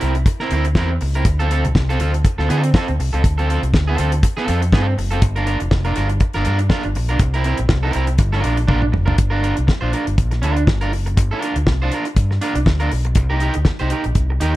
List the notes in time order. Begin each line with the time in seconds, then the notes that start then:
0.00 C2 C4 E4 A#4, closed hi-hat
0.15 muted clean electric guitar stroke, closed hi-hat
0.26 muted clean electric guitar stroke, kick, closed hi-hat
0.40 C4 E4 A#4, snare
0.51 D2 C4 E4 A#4, closed hi-hat
0.65 muted clean electric guitar stroke, closed hi-hat
0.75 E2 C4 E4 A#4, kick, snare
0.91 muted clean electric guitar stroke
1.01 C#2, muted clean electric guitar stroke, open hi-hat
1.14 C4 E4 A#4, closed hi-hat
1.25 D2, muted clean electric guitar stroke, kick, closed hi-hat
1.39 C4 F4 A4, closed hi-hat
1.51 C4 F4 A4, closed hi-hat
1.64 C2, muted clean electric guitar stroke, closed hi-hat
1.75 C2, muted clean electric guitar stroke, kick, snare
1.89 C4 F4 A4, closed hi-hat
1.99 D2 C4 F4 A4, closed hi-hat
2.13 muted clean electric guitar stroke, closed hi-hat
2.25 muted clean electric guitar stroke, kick, closed hi-hat
2.38 D2 C4 F4 A4, snare
2.49 D3 C4 F4 A4, closed hi-hat
2.63 muted clean electric guitar stroke, closed hi-hat
2.74 C4 F4 A4, kick, snare
2.88 D2, muted clean electric guitar stroke, closed hi-hat
3.00 C2, muted clean electric guitar stroke, open hi-hat
3.13 C#2 C4 F4 A4, closed hi-hat
3.24 D2, muted clean electric guitar stroke, kick, closed hi-hat
3.38 C4 F4 A4, closed hi-hat
3.48 C4 F4 A4, closed hi-hat
3.62 C2, muted clean electric guitar stroke, closed hi-hat
3.74 D2, muted clean electric guitar stroke, kick, snare
3.88 C4 F4 A4
3.98 D2 C4 F4 A4, closed hi-hat
4.12 muted clean electric guitar stroke, closed hi-hat
4.23 muted clean electric guitar stroke, kick, closed hi-hat
4.37 C4 F4 A4, snare
4.48 F2 C4 F4 A4, closed hi-hat
4.62 muted clean electric guitar stroke, closed hi-hat
4.72 G2 C4 F4 A4, kick, snare
4.87 muted clean electric guitar stroke
4.98 F#1, muted clean electric guitar stroke, open hi-hat
5.11 C4 F4 A4, closed hi-hat
5.22 G1, muted clean electric guitar stroke, kick, closed hi-hat
5.36 D4 F4 A#4, closed hi-hat
5.46 D4 F4 A#4, closed hi-hat
5.60 F1, muted clean electric guitar stroke, closed hi-hat
5.71 F1, muted clean electric guitar stroke, kick, snare
5.85 D4 F4 A#4, closed hi-hat
5.96 G1 D4 F4 A#4, closed hi-hat
6.09 muted clean electric guitar stroke, closed hi-hat
6.20 muted clean electric guitar stroke, kick, closed hi-hat
6.33 G1 D4 F4 A#4, snare, closed hi-hat
6.44 G2 D4 F4 A#4, closed hi-hat
6.59 muted clean electric guitar stroke, closed hi-hat
6.69 D4 F4 A#4, kick, snare
6.83 G1, muted clean electric guitar stroke, closed hi-hat
6.95 A#1, muted clean electric guitar stroke, open hi-hat
7.09 B1 D4 F4 A#4, closed hi-hat
7.19 C2, muted clean electric guitar stroke, kick, closed hi-hat
7.34 C4 E4 A#4, closed hi-hat
7.44 C4 E4 A#4, closed hi-hat
7.58 A#1, muted clean electric guitar stroke, closed hi-hat
7.69 C2, muted clean electric guitar stroke, kick, snare
7.83 C4 E4 A#4
7.93 C2 C4 E4 A#4, closed hi-hat
8.07 muted clean electric guitar stroke, closed hi-hat
8.18 G1, muted clean electric guitar stroke, kick, closed hi-hat
8.33 D4 F4 A#4, snare
8.44 A#1 D4 F4 A#4, closed hi-hat
8.57 muted clean electric guitar stroke, closed hi-hat
8.68 A#1 D4 F4 A#4, kick, high tom
8.82 muted clean electric guitar stroke, mid tom
8.92 F#1, muted clean electric guitar stroke, mid tom
9.06 D4 F4 A#4, floor tom
9.17 G1, muted clean electric guitar stroke, kick, closed hi-hat
9.30 D4 F4 A#4
9.42 D4 F4 A#4, closed hi-hat
9.56 C2, muted clean electric guitar stroke, closed hi-hat
9.67 muted clean electric guitar stroke, kick, snare
9.81 A#1 D4 F4 C5
9.92 D4 F4 A#4, closed hi-hat
10.06 G1, muted clean electric guitar stroke, closed hi-hat
10.18 A#1, kick, closed hi-hat
10.31 muted clean electric guitar stroke, snare, closed hi-hat
10.42 D2 D4 F4 A#4, closed hi-hat
10.56 muted clean electric guitar stroke, closed hi-hat
10.67 G1, muted clean electric guitar stroke, kick, snare
10.81 D4 F4 A#4, closed hi-hat
10.92 F#1, muted clean electric guitar stroke, open hi-hat
11.06 muted clean electric guitar stroke, closed hi-hat
11.17 G1, muted clean electric guitar stroke, kick, closed hi-hat
11.31 D4 F4 A#4
11.42 D4 F4 A#4, closed hi-hat
11.56 D2, muted clean electric guitar stroke, closed hi-hat
11.67 C2, muted clean electric guitar stroke, kick, snare
11.82 D4 F4 C5
11.92 D4 F4 A#4, closed hi-hat
12.05 muted clean electric guitar stroke, closed hi-hat
12.16 G2, kick, closed hi-hat
12.31 muted clean electric guitar stroke, snare
12.41 D4 F4 A#4, closed hi-hat
12.55 C2, muted clean electric guitar stroke, closed hi-hat
12.66 D2, muted clean electric guitar stroke, kick, snare
12.80 D4 F4 A#4, closed hi-hat
12.91 B1, muted clean electric guitar stroke, open hi-hat
13.05 muted clean electric guitar stroke, closed hi-hat
13.15 C2, muted clean electric guitar stroke, kick, closed hi-hat
13.30 D#4 G4 A#4
13.40 D#4 G4 A#4, closed hi-hat
13.54 D2, muted clean electric guitar stroke, closed hi-hat
13.65 muted clean electric guitar stroke, kick, snare
13.79 C2 D#4 G4 C5, closed hi-hat
13.90 D#4 G4 A#4, closed hi-hat
14.04 A#1, muted clean electric guitar stroke, closed hi-hat
14.15 C2, kick, closed hi-hat
14.30 muted clean electric guitar stroke
14.40 D#2 D#4 G4 A#4, closed hi-hat